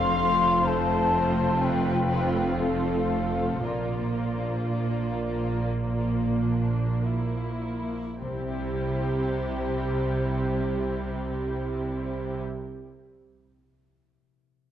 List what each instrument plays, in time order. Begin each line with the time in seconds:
Already playing: double bass section F1, cello section F2, harp F2, viola section F3 A3, violin section C4 F4 F5, flute section C6
0.06 harp C4
0.67 harp A4, violin section C5, flute section A5
1.30 harp C4
1.61 harp C3, violin section B4, flute section G5
1.95 harp C4
2.60 violin section A4, harp A4, flute section F5
3.29 harp C4
3.64 double bass section A#1, harp A#2, cello section A#2, viola section F3 A#3, violin section A#3 F4, flute section D5
4.00 harp A#3
4.37 harp D4
4.73 violin section A#3, harp A#4
5.48 harp A#3
5.86 harp F3
6.25 harp A#3
6.43 violin section D4
7.02 violin section E4, harp A#4
7.81 harp A#3
8.21 double bass section C2, harp C3, viola section C3 G3, cello section C3, violin section C4 E4 G4, flute section C5
8.28 harp C4
8.35 harp E4
8.42 harp G4
8.49 harp E5